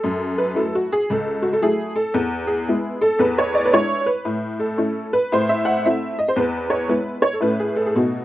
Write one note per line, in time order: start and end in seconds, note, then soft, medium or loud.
0.00 0.49 F#2 medium
0.00 0.37 A4 medium
0.38 0.57 B4 medium
0.55 0.85 F#3 soft
0.55 0.85 A3 soft
0.55 0.85 E4 soft
0.55 0.74 A4 medium
0.75 0.93 F#4 medium
0.92 1.10 G#4 medium
1.10 1.55 C#2 medium
1.10 1.44 A4 medium
1.42 1.52 F#4 medium
1.53 1.63 A4 medium
1.61 1.90 F#3 soft
1.61 1.91 A3 medium
1.61 1.92 E4 soft
1.61 1.96 G#4 medium
1.96 2.15 A4 medium
2.14 2.59 E2 medium
2.47 3.00 G#4 medium
2.68 2.97 G#3 soft
2.68 2.97 B3 soft
2.68 2.97 E4 medium
3.01 3.21 A4 loud
3.19 3.64 E2 medium
3.19 3.37 B4 medium
3.38 3.54 C#5 medium
3.54 3.64 D5 medium
3.65 3.74 B4 medium
3.73 4.02 G#3 soft
3.73 4.02 D4 medium
3.73 4.02 E4 medium
3.73 4.06 C#5 loud
4.06 4.26 B4 medium
4.25 4.70 A2 medium
4.59 5.12 A4 medium
4.77 5.07 A3 soft
4.77 5.07 C#4 medium
4.77 5.07 E4 medium
5.13 5.32 B4 loud
5.32 5.77 A2 medium
5.32 5.49 C5 medium
5.49 5.65 E5 medium
5.65 5.84 F#5 medium
5.85 6.14 A3 soft
5.85 6.14 C4 medium
5.85 6.15 E4 medium
5.85 6.18 E5 medium
6.19 6.28 D#5 medium
6.28 6.37 C5 medium
6.36 6.81 E2 medium
6.36 6.70 B4 medium
6.70 6.90 C#5 medium
6.88 7.18 G#3 soft
6.88 7.19 B3 soft
6.88 7.19 E4 soft
6.88 7.23 B4 medium
7.22 7.32 C#5 medium
7.33 7.43 A4 medium
7.40 7.86 A2 medium
7.40 7.70 A3 soft
7.40 7.71 C#4 soft
7.40 7.71 E4 soft
7.40 7.59 B4 medium
7.59 7.76 G#4 medium
7.76 7.86 A4 medium
7.86 7.96 G#4 medium
7.95 8.25 B2 medium
7.95 8.24 A3 soft
7.95 8.25 B3 soft
7.95 8.25 D#4 soft
7.95 8.25 F#4 medium